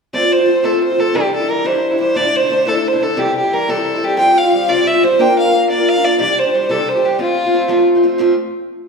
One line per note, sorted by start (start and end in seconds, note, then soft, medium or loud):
0.13 0.22 F3 medium
0.13 0.23 A3 medium
0.13 0.23 C4 medium
0.13 0.21 F4 medium
0.13 0.34 D5 medium
0.22 0.39 A3 soft
0.22 0.40 C4 soft
0.22 0.38 F4 soft
0.32 0.66 C5 medium
0.39 0.47 A3 soft
0.39 0.46 C4 soft
0.39 0.47 F4 soft
0.46 0.62 F3 soft
0.46 0.63 A3 medium
0.46 0.63 C4 soft
0.46 0.63 F4 medium
0.63 0.73 F3 medium
0.63 0.72 A3 medium
0.63 0.73 C4 medium
0.63 0.71 F4 medium
0.63 0.83 A4 medium
0.73 0.90 A3 soft
0.73 0.91 C4 soft
0.73 0.89 F4 soft
0.83 1.01 C5 medium
0.90 0.99 A3 soft
0.90 0.98 C4 soft
0.90 0.98 F4 soft
0.98 1.14 F3 medium
0.98 1.15 A3 medium
0.98 1.15 C4 soft
0.98 1.15 F4 medium
0.98 1.17 A4 medium
1.14 1.23 C3 medium
1.14 1.24 E3 medium
1.14 1.24 G3 medium
1.14 1.23 D4 medium
1.14 1.22 E4 medium
1.14 1.33 G4 medium
1.23 1.42 G3 soft
1.23 1.40 D4 soft
1.23 1.39 E4 soft
1.35 1.52 A4 medium
1.40 1.48 G3 soft
1.40 1.49 D4 soft
1.40 1.49 E4 medium
1.49 1.63 E3 medium
1.49 1.64 G3 medium
1.49 1.64 D4 medium
1.49 1.65 E4 medium
1.49 1.68 A#4 medium
1.64 1.74 C3 medium
1.64 1.74 E3 medium
1.64 1.74 G3 medium
1.64 1.73 D4 medium
1.64 1.72 E4 medium
1.64 2.00 C5 medium
1.73 1.92 G3 soft
1.73 1.91 D4 soft
1.73 1.90 E4 soft
1.91 1.99 G3 soft
1.91 1.99 D4 soft
1.91 1.99 E4 medium
1.99 2.15 E3 medium
1.99 2.15 G3 medium
1.99 2.14 D4 medium
1.99 2.15 E4 medium
1.99 2.18 C5 medium
2.14 2.24 D2 medium
2.14 2.24 A2 medium
2.14 2.24 D3 medium
2.14 2.24 A3 medium
2.14 2.23 D4 medium
2.14 2.22 E4 medium
2.14 2.37 D5 loud
2.24 2.42 D3 soft
2.24 2.41 A3 soft
2.24 2.41 D4 soft
2.24 2.40 E4 soft
2.36 2.70 C5 loud
2.41 2.48 D3 soft
2.41 2.49 A3 soft
2.41 2.50 D4 soft
2.41 2.49 E4 soft
2.49 2.65 D3 medium
2.49 2.65 A3 medium
2.49 2.65 D4 medium
2.49 2.66 E4 medium
2.65 2.75 D2 medium
2.65 2.75 A2 medium
2.65 2.75 D3 medium
2.65 2.75 A3 medium
2.65 2.74 D4 medium
2.65 2.73 E4 medium
2.65 2.89 A4 medium
2.74 2.93 D3 soft
2.74 2.93 A3 soft
2.74 2.92 D4 soft
2.74 2.91 E4 soft
2.88 3.04 C5 medium
2.92 2.99 D3 soft
2.92 3.00 A3 soft
2.92 3.01 D4 medium
2.92 3.00 E4 soft
3.00 3.16 D3 soft
3.00 3.17 A3 medium
3.00 3.17 D4 medium
3.00 3.17 E4 medium
3.00 3.20 A4 medium
3.16 3.26 C3 medium
3.16 3.26 E3 medium
3.16 3.26 G3 medium
3.16 3.26 C4 medium
3.16 3.24 E4 medium
3.16 3.36 G4 medium
3.25 3.44 G3 soft
3.25 3.44 C4 soft
3.25 3.42 E4 soft
3.38 3.55 G4 medium
3.44 3.51 G3 soft
3.44 3.52 C4 soft
3.44 3.51 E4 medium
3.51 3.67 E3 medium
3.51 3.68 G3 medium
3.51 3.68 C4 medium
3.51 3.68 E4 medium
3.51 3.71 A#4 medium
3.68 3.77 C3 medium
3.68 3.77 E3 medium
3.68 3.77 G3 medium
3.68 3.77 C4 medium
3.68 3.76 E4 medium
3.68 4.06 A4 medium
3.77 3.95 G3 soft
3.77 3.94 C4 soft
3.77 3.93 E4 soft
3.94 4.02 G3 soft
3.94 4.02 C4 soft
3.94 4.02 E4 soft
4.02 4.17 E3 soft
4.02 4.17 G3 soft
4.02 4.17 C4 medium
4.02 4.18 E4 medium
4.02 4.18 G4 medium
4.17 4.27 C3 medium
4.17 4.27 F3 medium
4.17 4.27 G3 medium
4.17 4.26 C4 medium
4.17 4.25 F4 medium
4.17 4.39 G5 loud
4.26 4.45 G3 soft
4.26 4.43 C4 soft
4.26 4.42 F4 soft
4.38 4.71 F5 medium
4.43 4.52 G3 soft
4.43 4.52 C4 soft
4.43 4.52 F4 soft
4.52 4.67 F3 medium
4.52 4.68 G3 medium
4.52 4.68 C4 medium
4.52 4.68 F4 medium
4.68 4.77 C3 medium
4.68 4.77 F3 medium
4.68 4.78 G3 medium
4.68 4.77 C4 medium
4.68 4.76 F4 medium
4.68 4.89 D5 medium
4.77 4.95 G3 soft
4.77 4.94 C4 soft
4.77 4.93 F4 soft
4.87 5.05 E5 medium
4.94 5.02 G3 soft
4.94 5.02 C4 medium
4.94 5.02 F4 medium
5.02 5.18 F3 soft
5.02 5.19 G3 soft
5.02 5.19 C4 medium
5.02 5.19 F4 medium
5.02 5.22 C5 medium
5.19 5.28 A#3 medium
5.19 5.28 D4 medium
5.19 5.28 F4 medium
5.19 5.27 A#4 medium
5.19 5.38 G5 medium
5.28 5.46 D4 soft
5.28 5.45 F4 soft
5.28 5.44 A#4 soft
5.39 5.67 F5 medium
5.45 5.52 D4 soft
5.45 5.53 F4 soft
5.45 5.53 A#4 soft
5.53 5.68 A#3 soft
5.53 5.68 D4 soft
5.53 5.69 F4 medium
5.53 5.69 A#4 medium
5.69 5.78 A#3 medium
5.69 5.78 D4 medium
5.69 5.79 F4 medium
5.69 5.77 A#4 medium
5.69 5.90 D5 medium
5.78 5.96 D4 soft
5.78 5.96 F4 soft
5.78 5.95 A#4 soft
5.89 6.06 F5 medium
5.96 6.03 D4 soft
5.96 6.03 F4 soft
5.96 6.03 A#4 soft
6.03 6.19 A#3 soft
6.03 6.19 D4 soft
6.03 6.20 F4 medium
6.03 6.20 D5 medium
6.19 6.28 C3 medium
6.19 6.28 E3 medium
6.19 6.28 G3 medium
6.19 6.28 D4 medium
6.19 6.26 G4 medium
6.19 6.40 D5 medium
6.28 6.46 G3 soft
6.28 6.44 D4 soft
6.28 6.43 G4 soft
6.39 6.72 C5 medium
6.44 6.53 G3 soft
6.44 6.53 D4 soft
6.44 6.53 G4 soft
6.53 6.68 E3 soft
6.53 6.69 G3 medium
6.53 6.69 D4 medium
6.53 6.70 G4 medium
6.69 6.78 C3 medium
6.69 6.78 E3 medium
6.69 6.79 G3 medium
6.69 6.78 D4 medium
6.69 6.77 G4 medium
6.69 6.90 A4 medium
6.78 6.96 G3 soft
6.78 6.95 D4 soft
6.78 6.94 G4 soft
6.88 7.06 C5 medium
6.95 7.03 G3 soft
6.95 7.04 D4 soft
6.95 7.03 G4 medium
7.03 7.18 E3 soft
7.03 7.19 G3 soft
7.03 7.19 D4 medium
7.03 7.20 G4 medium
7.18 7.28 F3 medium
7.18 7.27 A3 medium
7.18 7.28 C4 medium
7.18 7.26 F4 medium
7.18 7.84 F4 medium
7.27 7.45 A3 soft
7.27 7.46 C4 soft
7.27 7.43 F4 soft
7.44 7.54 A3 soft
7.44 7.53 C4 soft
7.44 7.53 F4 soft
7.53 7.67 F3 medium
7.53 7.68 A3 medium
7.53 7.68 C4 medium
7.53 7.69 F4 medium
7.68 7.78 F3 medium
7.68 7.78 A3 medium
7.68 7.78 C4 medium
7.68 7.77 F4 medium
7.78 7.95 A3 soft
7.78 7.96 C4 soft
7.78 7.94 F4 medium
7.95 8.03 A3 medium
7.95 8.02 C4 medium
7.95 8.03 F4 medium
8.03 8.17 F3 medium
8.03 8.19 A3 medium
8.03 8.18 C4 medium
8.03 8.20 F4 medium
8.18 8.33 F3 medium
8.18 8.34 A3 medium
8.18 8.34 C4 medium
8.18 8.34 F4 medium